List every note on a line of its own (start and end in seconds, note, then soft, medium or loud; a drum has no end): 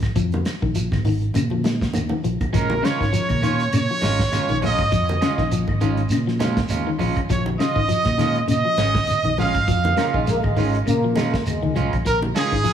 0.00 0.14 G#1 loud
0.00 0.12 F3 medium
0.00 kick medium
0.00 snare soft
0.00 closed hi-hat soft
0.00 claves medium
0.16 0.41 F2 medium
0.16 0.42 F3 medium
0.16 kick loud
0.16 closed hi-hat medium
0.16 high conga soft
0.16 shekere medium
0.32 closed hi-hat soft
0.32 high conga loud
0.45 muted fingered electric bass stroke soft
0.45 snare medium
0.45 closed hi-hat medium
0.45 claves medium
0.45 shekere soft
0.62 0.88 A#1 loud
0.62 0.74 D#3 medium
0.62 kick medium
0.75 1.01 F3 medium
0.75 closed hi-hat medium
0.75 high conga soft
0.75 shekere medium
0.92 1.29 G#1 medium
0.92 kick medium
0.92 snare soft
0.92 high conga medium
0.92 claves medium
1.05 1.31 D#3 medium
1.05 open hi-hat medium
1.05 low conga medium
1.05 shekere soft
1.22 closed hi-hat soft
1.34 1.86 A#2 medium
1.34 1.49 C#3 medium
1.34 closed hi-hat medium
1.34 high conga loud
1.34 claves medium
1.34 shekere medium
1.50 1.63 F3 medium
1.50 high conga medium
1.64 1.90 G#3 medium
1.64 snare medium
1.64 closed hi-hat medium
1.64 high conga medium
1.64 shekere soft
1.81 kick medium
1.81 snare medium
1.94 2.09 D#2 medium
1.94 closed hi-hat medium
1.94 low conga medium
1.94 claves medium
1.94 shekere medium
2.09 2.22 D#3 medium
2.09 low conga medium
2.24 2.39 A#1 medium
2.24 2.50 F3 medium
2.24 closed hi-hat medium
2.24 shekere soft
2.41 kick medium
2.41 closed hi-hat soft
2.41 low conga medium
2.41 claves medium
2.53 2.80 A#1 medium
2.53 2.79 F3 medium
2.53 2.73 G#3 medium
2.53 2.73 C#4 medium
2.53 2.87 A#4 medium
2.53 muted clean electric guitar stroke medium
2.53 kick medium
2.53 closed hi-hat medium
2.53 shekere medium
2.57 2.86 A#4 medium
2.70 high conga loud
2.82 2.97 C#3 medium
2.82 3.02 G#3 medium
2.82 3.03 C#4 medium
2.82 3.03 F4 medium
2.82 3.74 C#5 medium
2.82 snare medium
2.82 closed hi-hat medium
2.82 claves medium
2.82 shekere soft
3.00 3.12 G#1 medium
3.00 3.12 D#3 medium
3.00 kick medium
3.00 snare soft
3.13 3.39 F3 medium
3.13 closed hi-hat medium
3.13 high conga soft
3.13 shekere medium
3.29 3.67 A#2 medium
3.29 kick medium
3.29 closed hi-hat soft
3.29 high conga medium
3.29 claves medium
3.42 3.69 D#3 medium
3.42 3.62 C#4 medium
3.42 3.62 F4 medium
3.42 muted clean electric guitar stroke medium
3.42 closed hi-hat medium
3.42 high conga medium
3.42 low conga medium
3.42 shekere soft
3.60 closed hi-hat soft
3.73 3.87 A#2 medium
3.73 3.88 C#3 medium
3.73 closed hi-hat medium
3.73 high conga soft
3.73 claves medium
3.73 shekere medium
3.77 4.60 C#5 medium
3.77 4.60 C#5 loud
3.91 4.02 F3 medium
4.01 4.28 G#1 medium
4.01 4.21 G#3 medium
4.01 4.29 G#3 medium
4.01 4.22 C#4 medium
4.01 4.22 F4 medium
4.01 snare medium
4.01 closed hi-hat soft
4.01 high conga medium
4.01 shekere soft
4.19 kick medium
4.19 snare medium
4.32 4.51 G#3 medium
4.32 4.52 C#4 medium
4.32 4.52 F4 medium
4.32 muted fingered electric bass stroke soft
4.32 snare soft
4.32 closed hi-hat medium
4.32 high conga medium
4.32 claves medium
4.32 shekere loud
4.49 4.79 A#1 medium
4.49 4.61 D#3 medium
4.49 closed hi-hat soft
4.49 high conga medium
4.62 4.88 F3 medium
4.62 4.81 G#3 medium
4.62 4.81 C#4 medium
4.62 4.82 F4 medium
4.62 5.49 D#5 loud
4.62 open hi-hat medium
4.62 low conga medium
4.62 shekere soft
4.67 5.50 D#5 medium
4.79 4.90 G#1 medium
4.79 kick medium
4.79 closed hi-hat soft
4.79 claves medium
4.92 5.17 F2 medium
4.92 5.18 F3 medium
4.92 kick medium
4.92 closed hi-hat medium
4.92 high conga soft
4.92 shekere medium
5.09 closed hi-hat soft
5.09 high conga loud
5.21 5.36 C#3 medium
5.21 5.40 G#3 medium
5.21 5.41 C#4 medium
5.21 5.41 F4 medium
5.21 snare medium
5.21 closed hi-hat medium
5.21 claves medium
5.21 shekere soft
5.38 5.64 A#1 medium
5.38 5.50 D#3 medium
5.38 kick medium
5.38 snare soft
5.52 5.77 F3 medium
5.52 closed hi-hat medium
5.52 high conga soft
5.52 shekere medium
5.67 6.04 G#1 medium
5.67 kick medium
5.67 high conga medium
5.67 claves medium
5.81 6.07 D#3 medium
5.81 6.00 G#3 medium
5.81 6.00 C#4 medium
5.81 6.00 F4 medium
5.81 closed hi-hat medium
5.81 low conga medium
5.81 shekere soft
5.97 closed hi-hat soft
6.09 6.61 A#2 medium
6.09 6.25 C#3 medium
6.09 snare soft
6.09 closed hi-hat medium
6.09 claves medium
6.09 shekere medium
6.27 6.39 F3 medium
6.27 snare soft
6.39 6.59 G#3 medium
6.39 6.66 G#3 medium
6.39 6.59 C#4 medium
6.39 6.60 F4 medium
6.39 snare medium
6.39 closed hi-hat medium
6.39 high conga loud
6.39 shekere soft
6.57 kick medium
6.57 snare medium
6.57 low conga medium
6.69 6.85 D#2 medium
6.69 6.89 G#3 medium
6.69 6.89 C#4 medium
6.69 6.89 F4 medium
6.69 closed hi-hat medium
6.69 high conga medium
6.69 claves medium
6.69 shekere medium
6.87 6.98 D#3 medium
6.99 7.14 A#1 medium
6.99 7.26 F3 medium
6.99 7.18 G#3 medium
6.99 7.19 C#4 medium
6.99 7.19 F4 medium
6.99 open hi-hat medium
6.99 low conga medium
6.99 shekere soft
7.17 kick medium
7.17 closed hi-hat soft
7.17 claves medium
7.29 7.55 A#1 medium
7.29 7.55 F3 medium
7.29 7.44 C#5 medium
7.29 kick medium
7.29 closed hi-hat medium
7.29 high conga soft
7.29 shekere medium
7.46 high conga medium
7.59 7.74 C#3 medium
7.59 7.79 F4 medium
7.59 8.44 D#5 medium
7.59 8.45 D#5 loud
7.59 muted clean electric guitar stroke medium
7.59 snare medium
7.59 closed hi-hat medium
7.59 claves medium
7.59 shekere soft
7.76 7.87 G#1 medium
7.76 7.87 D#3 medium
7.76 kick medium
7.89 8.14 F3 medium
7.89 closed hi-hat medium
7.89 high conga soft
7.89 shekere medium
8.05 8.43 A#2 medium
8.05 kick medium
8.05 snare soft
8.05 closed hi-hat soft
8.05 high conga medium
8.05 claves medium
8.18 8.44 D#3 medium
8.18 8.38 G#3 medium
8.18 8.38 C#4 medium
8.18 8.38 F4 medium
8.18 snare soft
8.18 closed hi-hat medium
8.18 high conga medium
8.18 low conga medium
8.18 shekere soft
8.35 closed hi-hat soft
8.48 8.62 A#2 medium
8.48 8.62 C#3 medium
8.48 9.34 D#5 medium
8.48 9.35 D#5 loud
8.48 closed hi-hat medium
8.48 high conga soft
8.48 claves medium
8.48 shekere medium
8.65 8.76 F3 medium
8.78 9.03 G#1 medium
8.78 8.97 G#3 medium
8.78 9.04 G#3 medium
8.78 8.98 C#4 medium
8.78 muted clean electric guitar stroke medium
8.78 snare medium
8.78 closed hi-hat medium
8.78 high conga medium
8.78 shekere soft
8.95 kick medium
8.95 snare medium
9.07 muted fingered electric bass stroke soft
9.07 closed hi-hat medium
9.07 high conga medium
9.07 claves medium
9.07 shekere medium
9.23 9.55 A#1 medium
9.23 9.36 D#3 medium
9.23 closed hi-hat soft
9.23 high conga medium
9.38 9.64 F3 medium
9.38 9.57 G#3 medium
9.38 9.57 C#4 medium
9.38 9.58 F4 medium
9.38 10.24 F5 loud
9.38 10.24 F5 medium
9.38 open hi-hat soft
9.38 low conga medium
9.38 shekere soft
9.54 9.66 G#1 loud
9.54 kick medium
9.54 closed hi-hat soft
9.54 claves medium
9.68 9.93 F2 loud
9.68 9.93 F3 medium
9.68 kick medium
9.68 closed hi-hat medium
9.68 high conga soft
9.68 shekere medium
9.84 closed hi-hat soft
9.84 high conga loud
9.97 10.11 C#3 medium
9.97 10.14 G#3 medium
9.97 10.04 A#3 medium
9.97 10.13 C#4 medium
9.97 10.12 F4 medium
9.97 snare medium
9.97 closed hi-hat medium
9.97 claves medium
9.97 shekere soft
10.13 10.39 A#1 loud
10.13 10.25 D#3 medium
10.13 10.26 G#3 loud
10.13 10.31 C#4 soft
10.13 10.30 F4 medium
10.13 kick medium
10.27 10.53 G#3 medium
10.27 10.43 A#3 loud
10.27 snare soft
10.27 closed hi-hat medium
10.27 high conga soft
10.27 shekere medium
10.44 10.81 G#1 medium
10.44 10.72 G#3 loud
10.44 kick medium
10.44 high conga medium
10.44 claves medium
10.56 10.82 D#3 medium
10.56 10.76 G#3 medium
10.56 10.76 C#4 medium
10.56 10.77 F4 medium
10.56 open hi-hat medium
10.56 high conga medium
10.56 low conga medium
10.56 shekere soft
10.73 10.79 G#3 medium
10.73 closed hi-hat soft
10.86 11.38 A#2 medium
10.86 11.01 C#3 medium
10.86 11.14 A#3 loud
10.86 closed hi-hat medium
10.86 high conga soft
10.86 claves medium
10.86 shekere medium
11.04 11.15 F3 medium
11.16 11.35 G#3 medium
11.16 11.42 G#3 medium
11.16 11.33 G#3 medium
11.16 11.36 C#4 medium
11.16 11.36 F4 medium
11.16 snare medium
11.16 closed hi-hat soft
11.16 high conga medium
11.16 shekere soft
11.33 11.46 A#3 medium
11.33 kick medium
11.33 snare medium
11.46 11.61 D#2 medium
11.46 11.89 G#3 medium
11.46 closed hi-hat medium
11.46 high conga medium
11.46 claves medium
11.46 shekere medium
11.63 11.75 C#2 medium
11.63 11.74 D#3 medium
11.63 high conga medium
11.76 11.91 C2 medium
11.76 12.01 F3 medium
11.76 11.95 G#3 medium
11.76 11.95 C#4 medium
11.76 11.95 F4 medium
11.76 closed hi-hat soft
11.76 low conga medium
11.76 shekere soft
11.93 12.04 A#1 medium
11.93 kick medium
11.93 closed hi-hat soft
11.93 claves medium
12.05 12.31 A#1 medium
12.05 12.20 A#4 medium
12.05 12.21 A#4 medium
12.05 muted clean electric guitar stroke medium
12.05 kick medium
12.05 closed hi-hat medium
12.05 high conga soft
12.05 shekere medium
12.22 high conga medium
12.35 12.50 C#3 medium
12.35 12.54 G#3 medium
12.35 12.54 C#4 medium
12.35 12.54 F4 medium
12.35 12.73 G#4 loud
12.35 12.73 G#4 medium
12.35 snare medium
12.35 closed hi-hat medium
12.35 claves medium
12.35 shekere soft
12.52 12.63 G#1 medium
12.52 12.63 D#3 medium
12.52 kick medium
12.64 12.73 F3 medium
12.64 closed hi-hat medium
12.64 high conga soft
12.64 shekere medium